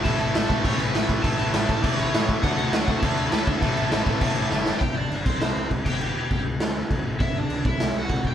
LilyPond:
<<
  \new Staff \with { instrumentName = "Overdriven electric guitar" } { \time 4/4 \key d \major \tempo 4 = 201 <a' a''>8 <a' a''>4 <a' a''>8 <cis'' cis'''>8 <b' b''>4 r8 | <a' a''>8 <a' a''>4 <a' a''>8 <d'' d'''>8 <cis'' cis'''>4 r8 | <fis' fis''>8 <fis' fis''>4 <fis' fis''>8 <a' a''>4 <b' b''>8 <a' a''>8~ | <a' a''>2. r4 |
<g' g''>8 <d' d''>4 <c' c''>8 <c' c''>4 r8 <g' g''>8~ | <g' g''>4. r2 r8 | <e' e''>8 <d' d''>4 <e' e''>4 <fis' fis''>4 <g' g''>8 | }
  \new Staff \with { instrumentName = "Distorted electric guitar" } { \clef bass \time 4/4 \key d \major <a, e a>4 <a, e a>4 <a, e a>4 <a, e a>4 | <a, e a>4 <a, e a>4 <a, e a>4 <a, e a>4 | <d a d'>4 <d a d'>4 <d a d'>4 <d a d'>4 | <a, e a>4 <a, e a>4 <a, e a>4 <a, e a>4 |
r1 | r1 | r1 | }
  \new Staff \with { instrumentName = "Picked electric bass" } { \clef bass \time 4/4 \key d \major a,,8 a,,8 a,,8 a,,8 a,,8 a,,8 a,,8 a,,8 | a,,8 a,,8 a,,8 a,,8 e,8 a,,8 a,4 | d,8 d,8 d,8 d,8 d,8 d,8 d,8 d,8 | a,,8 a,,8 a,,8 a,,8 e,8 a,,8 fis,,4 |
g,,8 g,,8 g,,8 c,8 c,8 c,8 c,8 g,,8 | g,,8 e,,8 g,,8 cis,8 d,4 d,8 a,,8 | g,,8 g,,8 cis,8 c,8 c,8 c,8 c,8 g,,8 | }
  \new DrumStaff \with { instrumentName = "Drums" } \drummode { \time 4/4 <cymc bd>8 cymc8 <cymc sn>8 <cymc bd>8 <cymc bd>8 cymc8 <cymc sn>8 <cymc bd>8 | <cymc bd>8 cymc8 <cymc sn>8 <cymc bd>8 <cymc bd>8 cymc8 <cymc sn>8 <cymc bd>8 | <cymc bd>8 cymc8 <cymc sn>8 <cymc bd>8 <cymc bd>8 cymc8 <cymc sn>8 <cymc bd>8 | <cymc bd>8 cymc8 <cymc sn>8 <cymc bd>8 <cymc bd>8 cymc8 sn8 sn8 |
<cymc bd>4 cymc8 <cymc bd>8 <cymc sn>4 <cymc bd>8 <cymc bd>8 | cymc4 <cymc bd>4 <cymc sn>4 <cymc bd>4 | <cymc bd>4 cymc8 bd8 <cymc sn>4 <cymc bd>8 bd8 | }
>>